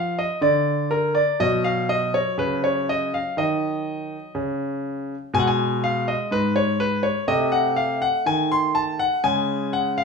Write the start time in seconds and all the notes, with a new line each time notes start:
Already playing: F3 A#3 F5
0.19 D#5
0.41 D3 D5
0.91 A#4
1.15 D5
1.40 B2 F#3 D#5
1.64 F5
1.89 D#5
2.14 C#5
2.38 C#3 B4
2.64 C#5
2.89 D#5
3.14 F5
3.37 D#3 D#5
4.35 C#3
5.34 B2 G#3 G#5
5.39 F#5
5.48 G#5
5.84 F5
6.08 D#5
6.31 G#2 B4
6.56 C#5
6.80 B4
7.03 C#5
7.28 C3 A3 D#5
7.52 F#5
7.76 F5
8.02 F#5
8.26 D#3 G#5
8.52 C6
8.75 A5
8.99 F#5
9.24 C#3 G#3 G#5
9.73 F#5
9.98 F5